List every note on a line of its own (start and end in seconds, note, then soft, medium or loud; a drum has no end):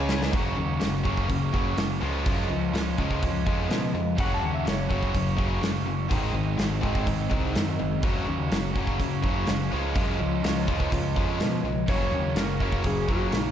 0.00 0.35 C#2 medium
0.00 0.31 C#3 medium
0.00 0.33 C#3 medium
0.00 0.32 G#3 loud
0.00 0.33 G#3 medium
0.00 0.32 C#4 loud
0.00 0.33 C#4 medium
0.00 0.33 C#4 loud
0.00 0.33 G#4 medium
0.00 0.33 C#5 medium
0.09 snare medium
0.22 snare medium
0.31 0.56 F#1 medium
0.31 0.55 F#2 medium
0.31 1.04 F#2 medium
0.31 0.55 C#3 medium
0.31 1.04 C#3 medium
0.31 0.56 F#3 medium
0.31 1.05 F#3 medium
0.31 kick loud
0.31 open hi-hat soft
0.35 1.05 A#3 medium
0.35 1.05 C#4 medium
0.35 1.03 F#4 medium
0.56 0.80 D#2 medium
0.56 0.78 F#2 medium
0.56 0.79 C#3 medium
0.80 1.28 F#1 medium
0.80 1.02 F#2 medium
0.80 1.02 C#3 medium
0.80 snare medium
0.80 open hi-hat soft
1.03 1.27 F#2 medium
1.03 1.27 C#3 medium
1.03 1.99 C#3 medium
1.03 1.27 F#3 medium
1.03 2.01 F#3 medium
1.03 2.00 A#3 medium
1.03 2.02 C#4 medium
1.03 2.00 F#4 medium
1.03 kick medium
1.08 2.01 F#2 medium
1.17 kick medium
1.28 1.76 F#1 medium
1.28 1.50 F#2 medium
1.28 1.51 C#3 medium
1.28 kick medium
1.28 open hi-hat soft
1.53 1.75 F#2 medium
1.53 1.76 C#3 medium
1.53 1.76 F#3 medium
1.53 kick medium
1.76 2.00 F#1 medium
1.76 1.99 F#2 medium
1.76 1.99 C#3 medium
1.76 snare medium
1.76 open hi-hat soft
2.00 2.25 C#2 medium
2.00 2.72 C#3 medium
2.00 2.24 C#3 medium
2.00 2.72 F3 medium
2.00 2.24 F3 medium
2.00 2.25 G#3 medium
2.00 2.75 G#3 medium
2.00 2.76 C#4 medium
2.00 2.73 F4 medium
2.25 2.49 F#2 medium
2.25 2.48 C#3 medium
2.25 2.48 F3 medium
2.25 2.49 G#3 medium
2.25 kick medium
2.25 open hi-hat soft
2.50 2.72 C#2 medium
2.50 2.71 C#3 medium
2.50 2.71 F3 medium
2.73 2.96 C#2 medium
2.73 3.92 C#3 medium
2.73 2.95 C#3 medium
2.73 2.95 F3 medium
2.73 3.93 F3 medium
2.73 4.18 G#3 medium
2.73 3.94 C#4 medium
2.73 snare loud
2.73 open hi-hat soft
2.77 3.94 F4 medium
2.98 3.21 C#2 medium
2.98 3.20 C#3 medium
2.98 3.21 F3 medium
2.98 3.21 G#3 medium
2.98 kick medium
3.11 kick medium
3.23 3.45 C#2 medium
3.23 3.44 C#3 medium
3.23 3.44 F3 medium
3.23 kick medium
3.23 open hi-hat soft
3.46 3.68 F2 medium
3.46 3.69 C#3 medium
3.46 3.69 F3 medium
3.46 3.69 G#3 medium
3.46 kick medium
3.69 3.92 B2 medium
3.69 3.92 C#3 medium
3.69 3.92 F3 medium
3.69 snare medium
3.69 open hi-hat soft
3.94 4.17 F2 medium
3.94 4.16 C#3 medium
3.94 4.16 F3 medium
4.15 4.41 F#1 medium
4.15 4.87 F#2 medium
4.15 4.41 F#2 medium
4.15 4.88 C#3 medium
4.15 4.41 C#3 medium
4.15 4.89 F#3 medium
4.15 4.41 F#3 medium
4.15 4.88 A#3 medium
4.15 4.88 C#4 medium
4.15 4.86 F#4 medium
4.15 kick medium
4.15 open hi-hat soft
4.20 4.31 F#5 medium
4.34 4.44 A5 medium
4.42 4.66 D#2 medium
4.42 4.64 F#2 medium
4.42 4.64 C#3 medium
4.42 4.54 F#5 medium
4.55 4.66 E5 medium
4.65 5.13 F#1 medium
4.65 4.87 F#2 medium
4.65 4.87 C#3 medium
4.65 snare medium
4.65 open hi-hat soft
4.69 5.15 C#5 medium
4.88 5.12 F#2 medium
4.88 6.08 F#2 medium
4.88 5.13 C#3 medium
4.88 6.09 C#3 medium
4.88 6.09 F#3 medium
4.88 5.13 F#3 medium
4.88 6.09 A#3 medium
4.88 6.08 C#4 medium
4.88 6.08 F#4 medium
4.88 kick medium
5.03 kick medium
5.14 5.61 F#1 medium
5.14 5.35 F#2 medium
5.14 5.36 C#3 medium
5.14 kick medium
5.14 open hi-hat soft
5.37 5.60 F#2 medium
5.37 5.61 C#3 medium
5.37 5.61 F#3 medium
5.37 kick medium
5.62 6.09 F#1 medium
5.62 5.84 F#2 medium
5.62 5.84 C#3 medium
5.62 snare medium
5.62 open hi-hat soft
5.86 6.08 F#2 medium
5.86 6.08 C#3 medium
6.08 6.33 G#1 medium
6.08 6.80 G#2 medium
6.08 6.32 G#2 medium
6.08 6.33 D#3 medium
6.08 6.81 D#3 medium
6.08 6.33 G#3 medium
6.08 6.83 G#3 medium
6.08 6.82 C4 medium
6.08 kick medium
6.08 open hi-hat soft
6.12 6.81 D#4 medium
6.12 6.81 G#4 medium
6.33 6.57 G#1 medium
6.33 6.55 G#2 medium
6.33 6.56 D#3 medium
6.57 6.82 G#1 medium
6.57 6.80 G#2 medium
6.57 6.80 D#3 medium
6.57 snare medium
6.57 open hi-hat soft
6.81 7.06 G#1 medium
6.81 7.04 G#2 medium
6.81 7.04 D#3 medium
6.81 8.02 D#3 medium
6.81 7.05 G#3 medium
6.81 8.03 G#3 medium
6.81 8.02 C4 medium
6.81 8.01 D#4 medium
6.81 8.04 G#4 medium
6.81 kick medium
6.85 8.01 G#2 medium
6.95 kick medium
7.05 7.30 G#1 medium
7.05 7.28 G#2 medium
7.05 7.28 D#3 medium
7.05 kick medium
7.05 open hi-hat soft
7.29 7.54 C2 medium
7.29 7.53 G#2 medium
7.29 7.53 D#3 medium
7.29 7.53 G#3 medium
7.29 kick medium
7.54 7.79 F#2 medium
7.54 7.76 G#2 medium
7.54 7.76 D#3 medium
7.54 snare medium
7.54 open hi-hat soft
7.79 8.03 F#1 medium
7.79 8.01 G#2 medium
7.79 8.01 D#3 medium
8.01 8.26 F#1 medium
8.01 8.73 F#2 medium
8.01 8.25 F#2 medium
8.01 8.73 C#3 medium
8.01 8.26 C#3 medium
8.01 8.74 F#3 medium
8.01 8.26 F#3 medium
8.01 8.73 A#3 medium
8.01 8.73 C#4 medium
8.01 8.71 F#4 medium
8.01 kick loud
8.01 open hi-hat soft
8.26 8.51 D#2 medium
8.26 8.48 F#2 medium
8.26 8.49 C#3 medium
8.51 8.98 F#1 medium
8.51 8.73 F#2 medium
8.51 8.74 C#3 medium
8.51 snare loud
8.51 open hi-hat soft
8.72 8.98 F#2 medium
8.72 9.71 F#2 medium
8.72 9.68 C#3 medium
8.72 8.98 C#3 medium
8.72 9.70 F#3 medium
8.72 9.70 A#3 medium
8.72 9.72 C#4 medium
8.72 9.69 F#4 medium
8.72 kick medium
8.77 8.99 F#3 medium
8.87 kick medium
9.00 9.46 F#1 medium
9.00 9.21 F#2 medium
9.00 9.21 C#3 medium
9.00 kick medium
9.00 open hi-hat soft
9.22 9.45 F#2 medium
9.22 9.46 C#3 medium
9.22 9.46 F#3 medium
9.22 kick medium
9.47 9.71 F#1 medium
9.47 9.69 F#2 medium
9.47 9.69 C#3 medium
9.47 snare medium
9.47 open hi-hat soft
9.70 9.95 C#2 medium
9.70 10.41 C#3 medium
9.70 9.94 C#3 medium
9.70 10.42 F3 medium
9.70 9.94 F3 medium
9.70 10.44 G#3 medium
9.70 9.95 G#3 medium
9.70 10.44 C#4 medium
9.74 10.43 F4 medium
9.95 10.19 F#2 medium
9.95 10.18 C#3 medium
9.95 10.18 F3 medium
9.95 10.18 G#3 medium
9.95 kick medium
9.95 open hi-hat soft
10.19 10.44 C#2 medium
10.19 10.41 C#3 medium
10.19 10.41 F3 medium
10.42 10.67 C#2 medium
10.42 11.62 C#3 medium
10.42 10.66 C#3 medium
10.42 11.62 F3 medium
10.42 10.66 F3 medium
10.42 11.88 G#3 medium
10.42 11.63 C#4 medium
10.42 11.64 F4 medium
10.42 snare medium
10.42 open hi-hat soft
10.67 10.91 C#2 medium
10.67 10.90 C#3 medium
10.67 10.91 F3 medium
10.67 10.91 G#3 medium
10.67 kick medium
10.80 kick medium
10.92 11.15 C#2 medium
10.92 11.14 C#3 medium
10.92 11.13 F3 medium
10.92 kick medium
10.92 open hi-hat soft
11.16 11.40 F2 medium
11.16 11.38 C#3 medium
11.16 11.39 F3 medium
11.16 11.39 G#3 medium
11.16 kick medium
11.40 11.62 B2 medium
11.40 11.62 C#3 medium
11.40 11.62 F3 medium
11.40 snare medium
11.40 open hi-hat soft
11.63 11.87 B1 medium
11.63 11.86 C#3 medium
11.63 11.86 F3 medium
11.87 12.11 F#1 medium
11.87 12.58 F#2 medium
11.87 12.11 F#2 medium
11.87 12.58 C#3 medium
11.87 12.11 C#3 medium
11.87 12.59 F#3 medium
11.87 12.12 F#3 medium
11.87 12.59 A#3 medium
11.87 12.59 C#4 medium
11.87 12.58 F#4 medium
11.87 12.35 C#5 medium
11.87 kick medium
11.87 open hi-hat soft
12.12 12.35 D#2 medium
12.12 12.35 F#2 medium
12.12 12.35 C#3 medium
12.35 12.82 F#1 medium
12.35 12.58 F#2 medium
12.35 12.58 C#3 medium
12.35 12.84 A#4 medium
12.35 snare loud
12.35 open hi-hat soft
12.59 12.83 F#2 medium
12.59 13.51 F#2 medium
12.59 12.83 C#3 medium
12.59 13.51 C#3 medium
12.59 13.51 F#3 medium
12.59 12.84 F#3 medium
12.59 13.51 A#3 medium
12.59 13.51 C#4 medium
12.59 13.51 F#4 medium
12.59 kick medium
12.72 kick medium
12.84 13.30 F#1 medium
12.84 13.06 F#2 medium
12.84 13.06 C#3 medium
12.84 13.09 G#4 medium
12.84 kick medium
12.84 open hi-hat soft
13.08 13.31 F#2 medium
13.08 13.31 C#3 medium
13.08 13.31 F#3 loud
13.08 13.33 F#4 medium
13.08 kick medium
13.32 13.51 A#1 medium
13.32 13.51 F#2 medium
13.32 13.51 C#3 medium
13.32 13.51 D#4 medium
13.32 snare medium
13.32 open hi-hat soft